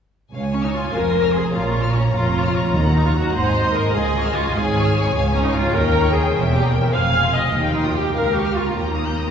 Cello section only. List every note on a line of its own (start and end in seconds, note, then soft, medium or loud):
0.33 0.84 C#2 soft
0.94 1.45 F2 soft
1.55 2.05 A#2 soft
2.15 2.65 F2 soft
2.74 3.24 D#2 soft
3.34 3.84 G#2 soft
3.94 4.43 C#2 medium
4.54 5.03 G#2 medium
5.13 5.63 C#2 medium
5.73 6.23 D#2 soft
6.33 6.83 E2 medium
6.93 7.43 F2 medium
7.53 8.04 D#2 soft
8.15 8.66 C#2 soft
8.77 9.29 D#2 soft